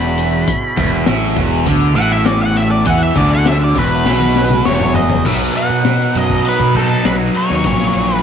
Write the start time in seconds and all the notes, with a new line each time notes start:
Already playing: E1 E2 B2 F#3 B3 E4 G#4 B5
0.02 maracas
0.16 closed hi-hat, maracas
0.32 maracas
0.45 B2, kick, closed hi-hat, maracas
0.76 E1 E2, kick, closed hi-hat, maracas
0.91 maracas
1.05 A1 A2, snare, closed hi-hat, maracas
1.11 F#3
1.36 E1 E2, kick, closed hi-hat, maracas
1.65 D2 D3, kick, closed hi-hat, maracas
1.72 B3
1.95 A1 A2 F#5, closed hi-hat, maracas
2.10 E5, maracas
2.24 D5, snare, closed hi-hat, maracas
2.35 B3
2.39 F#5, maracas
2.54 E5, snare, closed hi-hat, maracas
2.70 D5, maracas
2.84 E2 E3 F#5, kick, closed hi-hat, maracas
2.97 B2, maracas
3.03 E5
3.14 D2 D3 D5, kick, closed hi-hat, maracas
3.30 maracas
3.34 F#5
3.45 E5, snare, closed hi-hat, maracas
3.60 F#3, maracas
3.64 D5
3.75 E1 E2 B4, kick, snare, closed hi-hat, maracas
3.90 maracas
4.04 B1 B2, snare, maracas
4.20 B3, high tom, maracas
4.35 snare, maracas
4.50 mid tom, maracas
4.64 E1 E2 C#5, snare, maracas
4.79 mid tom, maracas
4.84 B3
4.93 D#5, floor tom, maracas
5.10 floor tom
5.24 B1 B2 F#3 D#4 B4 E5, kick, crash, maracas
5.53 F#5, ride, maracas
5.70 B2
5.83 B2, snare, ride, maracas
6.13 F#2 F#3, ride, maracas
6.17 D#5
6.28 kick, maracas
6.43 B3, ride, maracas
6.48 B4
6.60 B2, kick
6.73 D#4 A4, kick, ride, maracas
7.04 B1 F#3 B4, snare, ride, maracas
7.34 D#4 C#5, ride, maracas
7.50 D#2, snare, maracas
7.64 A#1 A#2 C#4 A#4, kick, ride, maracas
7.79 snare
7.94 A#1, ride, maracas
8.16 B4